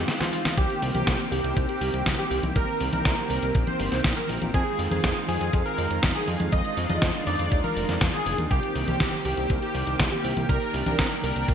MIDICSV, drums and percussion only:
0, 0, Header, 1, 2, 480
1, 0, Start_track
1, 0, Key_signature, -3, "minor"
1, 0, Tempo, 495868
1, 558, Time_signature, 4, 2, 24, 8
1, 11173, End_track
2, 0, Start_track
2, 0, Title_t, "Drums"
2, 78, Note_on_c, 9, 38, 76
2, 78, Note_on_c, 9, 46, 62
2, 175, Note_off_c, 9, 38, 0
2, 175, Note_off_c, 9, 46, 0
2, 199, Note_on_c, 9, 38, 74
2, 199, Note_on_c, 9, 42, 26
2, 199, Note_on_c, 9, 63, 64
2, 295, Note_off_c, 9, 38, 0
2, 295, Note_off_c, 9, 42, 0
2, 295, Note_off_c, 9, 63, 0
2, 317, Note_on_c, 9, 46, 112
2, 414, Note_off_c, 9, 46, 0
2, 439, Note_on_c, 9, 38, 85
2, 439, Note_on_c, 9, 42, 53
2, 439, Note_on_c, 9, 63, 62
2, 535, Note_off_c, 9, 38, 0
2, 535, Note_off_c, 9, 42, 0
2, 535, Note_off_c, 9, 63, 0
2, 557, Note_on_c, 9, 36, 121
2, 557, Note_on_c, 9, 42, 53
2, 653, Note_off_c, 9, 42, 0
2, 654, Note_off_c, 9, 36, 0
2, 678, Note_on_c, 9, 42, 27
2, 775, Note_off_c, 9, 42, 0
2, 797, Note_on_c, 9, 46, 112
2, 893, Note_off_c, 9, 46, 0
2, 917, Note_on_c, 9, 42, 56
2, 917, Note_on_c, 9, 63, 80
2, 1013, Note_off_c, 9, 42, 0
2, 1013, Note_off_c, 9, 63, 0
2, 1037, Note_on_c, 9, 36, 121
2, 1037, Note_on_c, 9, 38, 117
2, 1037, Note_on_c, 9, 42, 56
2, 1134, Note_off_c, 9, 36, 0
2, 1134, Note_off_c, 9, 38, 0
2, 1134, Note_off_c, 9, 42, 0
2, 1158, Note_on_c, 9, 42, 27
2, 1255, Note_off_c, 9, 42, 0
2, 1278, Note_on_c, 9, 46, 110
2, 1375, Note_off_c, 9, 46, 0
2, 1398, Note_on_c, 9, 42, 57
2, 1495, Note_off_c, 9, 42, 0
2, 1517, Note_on_c, 9, 36, 119
2, 1517, Note_on_c, 9, 42, 56
2, 1614, Note_off_c, 9, 36, 0
2, 1614, Note_off_c, 9, 42, 0
2, 1636, Note_on_c, 9, 42, 27
2, 1733, Note_off_c, 9, 42, 0
2, 1755, Note_on_c, 9, 46, 113
2, 1852, Note_off_c, 9, 46, 0
2, 1877, Note_on_c, 9, 42, 54
2, 1973, Note_off_c, 9, 42, 0
2, 1996, Note_on_c, 9, 38, 118
2, 1996, Note_on_c, 9, 42, 54
2, 1997, Note_on_c, 9, 36, 115
2, 2093, Note_off_c, 9, 36, 0
2, 2093, Note_off_c, 9, 38, 0
2, 2093, Note_off_c, 9, 42, 0
2, 2117, Note_on_c, 9, 42, 27
2, 2214, Note_off_c, 9, 42, 0
2, 2236, Note_on_c, 9, 46, 111
2, 2333, Note_off_c, 9, 46, 0
2, 2355, Note_on_c, 9, 42, 55
2, 2355, Note_on_c, 9, 63, 62
2, 2452, Note_off_c, 9, 42, 0
2, 2452, Note_off_c, 9, 63, 0
2, 2475, Note_on_c, 9, 42, 54
2, 2477, Note_on_c, 9, 36, 126
2, 2572, Note_off_c, 9, 42, 0
2, 2574, Note_off_c, 9, 36, 0
2, 2596, Note_on_c, 9, 42, 27
2, 2693, Note_off_c, 9, 42, 0
2, 2715, Note_on_c, 9, 46, 108
2, 2812, Note_off_c, 9, 46, 0
2, 2834, Note_on_c, 9, 42, 58
2, 2834, Note_on_c, 9, 63, 78
2, 2931, Note_off_c, 9, 42, 0
2, 2931, Note_off_c, 9, 63, 0
2, 2955, Note_on_c, 9, 38, 121
2, 2955, Note_on_c, 9, 42, 56
2, 2957, Note_on_c, 9, 36, 126
2, 3052, Note_off_c, 9, 38, 0
2, 3052, Note_off_c, 9, 42, 0
2, 3054, Note_off_c, 9, 36, 0
2, 3075, Note_on_c, 9, 42, 26
2, 3172, Note_off_c, 9, 42, 0
2, 3195, Note_on_c, 9, 46, 107
2, 3291, Note_off_c, 9, 46, 0
2, 3315, Note_on_c, 9, 42, 59
2, 3411, Note_off_c, 9, 42, 0
2, 3434, Note_on_c, 9, 42, 55
2, 3437, Note_on_c, 9, 36, 126
2, 3531, Note_off_c, 9, 42, 0
2, 3534, Note_off_c, 9, 36, 0
2, 3554, Note_on_c, 9, 42, 26
2, 3554, Note_on_c, 9, 63, 61
2, 3651, Note_off_c, 9, 42, 0
2, 3651, Note_off_c, 9, 63, 0
2, 3674, Note_on_c, 9, 46, 109
2, 3771, Note_off_c, 9, 46, 0
2, 3795, Note_on_c, 9, 38, 37
2, 3795, Note_on_c, 9, 42, 55
2, 3892, Note_off_c, 9, 38, 0
2, 3892, Note_off_c, 9, 42, 0
2, 3914, Note_on_c, 9, 38, 122
2, 3914, Note_on_c, 9, 46, 61
2, 3917, Note_on_c, 9, 36, 125
2, 4011, Note_off_c, 9, 38, 0
2, 4011, Note_off_c, 9, 46, 0
2, 4014, Note_off_c, 9, 36, 0
2, 4036, Note_on_c, 9, 42, 27
2, 4132, Note_off_c, 9, 42, 0
2, 4155, Note_on_c, 9, 46, 107
2, 4252, Note_off_c, 9, 46, 0
2, 4276, Note_on_c, 9, 42, 55
2, 4276, Note_on_c, 9, 63, 59
2, 4372, Note_off_c, 9, 42, 0
2, 4372, Note_off_c, 9, 63, 0
2, 4396, Note_on_c, 9, 42, 54
2, 4397, Note_on_c, 9, 36, 127
2, 4492, Note_off_c, 9, 42, 0
2, 4493, Note_off_c, 9, 36, 0
2, 4516, Note_on_c, 9, 42, 27
2, 4613, Note_off_c, 9, 42, 0
2, 4636, Note_on_c, 9, 46, 101
2, 4733, Note_off_c, 9, 46, 0
2, 4758, Note_on_c, 9, 42, 55
2, 4758, Note_on_c, 9, 63, 77
2, 4854, Note_off_c, 9, 42, 0
2, 4854, Note_off_c, 9, 63, 0
2, 4877, Note_on_c, 9, 36, 127
2, 4877, Note_on_c, 9, 38, 119
2, 4877, Note_on_c, 9, 42, 55
2, 4974, Note_off_c, 9, 36, 0
2, 4974, Note_off_c, 9, 38, 0
2, 4974, Note_off_c, 9, 42, 0
2, 4997, Note_on_c, 9, 42, 27
2, 5094, Note_off_c, 9, 42, 0
2, 5116, Note_on_c, 9, 46, 103
2, 5213, Note_off_c, 9, 46, 0
2, 5236, Note_on_c, 9, 42, 54
2, 5333, Note_off_c, 9, 42, 0
2, 5355, Note_on_c, 9, 42, 56
2, 5357, Note_on_c, 9, 36, 127
2, 5452, Note_off_c, 9, 42, 0
2, 5454, Note_off_c, 9, 36, 0
2, 5477, Note_on_c, 9, 42, 27
2, 5574, Note_off_c, 9, 42, 0
2, 5596, Note_on_c, 9, 46, 101
2, 5693, Note_off_c, 9, 46, 0
2, 5717, Note_on_c, 9, 42, 54
2, 5813, Note_off_c, 9, 42, 0
2, 5835, Note_on_c, 9, 38, 123
2, 5835, Note_on_c, 9, 42, 51
2, 5837, Note_on_c, 9, 36, 121
2, 5932, Note_off_c, 9, 38, 0
2, 5932, Note_off_c, 9, 42, 0
2, 5934, Note_off_c, 9, 36, 0
2, 5956, Note_on_c, 9, 42, 28
2, 6053, Note_off_c, 9, 42, 0
2, 6075, Note_on_c, 9, 46, 102
2, 6171, Note_off_c, 9, 46, 0
2, 6195, Note_on_c, 9, 42, 53
2, 6195, Note_on_c, 9, 63, 58
2, 6291, Note_off_c, 9, 42, 0
2, 6291, Note_off_c, 9, 63, 0
2, 6314, Note_on_c, 9, 42, 51
2, 6317, Note_on_c, 9, 36, 127
2, 6411, Note_off_c, 9, 42, 0
2, 6414, Note_off_c, 9, 36, 0
2, 6435, Note_on_c, 9, 42, 26
2, 6532, Note_off_c, 9, 42, 0
2, 6554, Note_on_c, 9, 46, 104
2, 6651, Note_off_c, 9, 46, 0
2, 6675, Note_on_c, 9, 42, 52
2, 6675, Note_on_c, 9, 63, 76
2, 6772, Note_off_c, 9, 42, 0
2, 6772, Note_off_c, 9, 63, 0
2, 6794, Note_on_c, 9, 38, 123
2, 6794, Note_on_c, 9, 42, 49
2, 6797, Note_on_c, 9, 36, 124
2, 6891, Note_off_c, 9, 38, 0
2, 6891, Note_off_c, 9, 42, 0
2, 6894, Note_off_c, 9, 36, 0
2, 6917, Note_on_c, 9, 42, 26
2, 7014, Note_off_c, 9, 42, 0
2, 7036, Note_on_c, 9, 46, 102
2, 7133, Note_off_c, 9, 46, 0
2, 7155, Note_on_c, 9, 42, 54
2, 7251, Note_off_c, 9, 42, 0
2, 7276, Note_on_c, 9, 42, 53
2, 7277, Note_on_c, 9, 36, 127
2, 7373, Note_off_c, 9, 36, 0
2, 7373, Note_off_c, 9, 42, 0
2, 7396, Note_on_c, 9, 42, 26
2, 7396, Note_on_c, 9, 63, 61
2, 7493, Note_off_c, 9, 42, 0
2, 7493, Note_off_c, 9, 63, 0
2, 7516, Note_on_c, 9, 46, 98
2, 7613, Note_off_c, 9, 46, 0
2, 7637, Note_on_c, 9, 38, 39
2, 7637, Note_on_c, 9, 42, 52
2, 7733, Note_off_c, 9, 38, 0
2, 7733, Note_off_c, 9, 42, 0
2, 7755, Note_on_c, 9, 38, 120
2, 7755, Note_on_c, 9, 46, 57
2, 7757, Note_on_c, 9, 36, 127
2, 7852, Note_off_c, 9, 38, 0
2, 7852, Note_off_c, 9, 46, 0
2, 7853, Note_off_c, 9, 36, 0
2, 7876, Note_on_c, 9, 42, 25
2, 7972, Note_off_c, 9, 42, 0
2, 7996, Note_on_c, 9, 46, 102
2, 8093, Note_off_c, 9, 46, 0
2, 8116, Note_on_c, 9, 42, 54
2, 8116, Note_on_c, 9, 63, 57
2, 8212, Note_off_c, 9, 42, 0
2, 8212, Note_off_c, 9, 63, 0
2, 8236, Note_on_c, 9, 36, 116
2, 8236, Note_on_c, 9, 42, 52
2, 8333, Note_off_c, 9, 36, 0
2, 8333, Note_off_c, 9, 42, 0
2, 8355, Note_on_c, 9, 42, 24
2, 8452, Note_off_c, 9, 42, 0
2, 8475, Note_on_c, 9, 46, 101
2, 8571, Note_off_c, 9, 46, 0
2, 8594, Note_on_c, 9, 42, 51
2, 8594, Note_on_c, 9, 63, 81
2, 8691, Note_off_c, 9, 42, 0
2, 8691, Note_off_c, 9, 63, 0
2, 8714, Note_on_c, 9, 38, 118
2, 8714, Note_on_c, 9, 42, 51
2, 8717, Note_on_c, 9, 36, 117
2, 8811, Note_off_c, 9, 38, 0
2, 8811, Note_off_c, 9, 42, 0
2, 8814, Note_off_c, 9, 36, 0
2, 8835, Note_on_c, 9, 42, 25
2, 8932, Note_off_c, 9, 42, 0
2, 8954, Note_on_c, 9, 46, 105
2, 9051, Note_off_c, 9, 46, 0
2, 9074, Note_on_c, 9, 42, 50
2, 9171, Note_off_c, 9, 42, 0
2, 9195, Note_on_c, 9, 42, 53
2, 9197, Note_on_c, 9, 36, 125
2, 9291, Note_off_c, 9, 42, 0
2, 9293, Note_off_c, 9, 36, 0
2, 9315, Note_on_c, 9, 42, 24
2, 9412, Note_off_c, 9, 42, 0
2, 9435, Note_on_c, 9, 46, 103
2, 9532, Note_off_c, 9, 46, 0
2, 9555, Note_on_c, 9, 42, 51
2, 9652, Note_off_c, 9, 42, 0
2, 9675, Note_on_c, 9, 38, 121
2, 9675, Note_on_c, 9, 42, 51
2, 9677, Note_on_c, 9, 36, 120
2, 9772, Note_off_c, 9, 38, 0
2, 9772, Note_off_c, 9, 42, 0
2, 9774, Note_off_c, 9, 36, 0
2, 9797, Note_on_c, 9, 42, 25
2, 9893, Note_off_c, 9, 42, 0
2, 9915, Note_on_c, 9, 46, 106
2, 10012, Note_off_c, 9, 46, 0
2, 10036, Note_on_c, 9, 42, 52
2, 10036, Note_on_c, 9, 63, 61
2, 10133, Note_off_c, 9, 42, 0
2, 10133, Note_off_c, 9, 63, 0
2, 10157, Note_on_c, 9, 36, 121
2, 10158, Note_on_c, 9, 42, 50
2, 10254, Note_off_c, 9, 36, 0
2, 10254, Note_off_c, 9, 42, 0
2, 10277, Note_on_c, 9, 42, 26
2, 10374, Note_off_c, 9, 42, 0
2, 10397, Note_on_c, 9, 46, 109
2, 10493, Note_off_c, 9, 46, 0
2, 10516, Note_on_c, 9, 42, 52
2, 10516, Note_on_c, 9, 63, 84
2, 10613, Note_off_c, 9, 42, 0
2, 10613, Note_off_c, 9, 63, 0
2, 10636, Note_on_c, 9, 38, 115
2, 10636, Note_on_c, 9, 42, 50
2, 10637, Note_on_c, 9, 36, 117
2, 10733, Note_off_c, 9, 38, 0
2, 10733, Note_off_c, 9, 42, 0
2, 10734, Note_off_c, 9, 36, 0
2, 10757, Note_on_c, 9, 42, 24
2, 10854, Note_off_c, 9, 42, 0
2, 10876, Note_on_c, 9, 46, 106
2, 10973, Note_off_c, 9, 46, 0
2, 10997, Note_on_c, 9, 42, 49
2, 11094, Note_off_c, 9, 42, 0
2, 11117, Note_on_c, 9, 36, 118
2, 11118, Note_on_c, 9, 42, 51
2, 11173, Note_off_c, 9, 36, 0
2, 11173, Note_off_c, 9, 42, 0
2, 11173, End_track
0, 0, End_of_file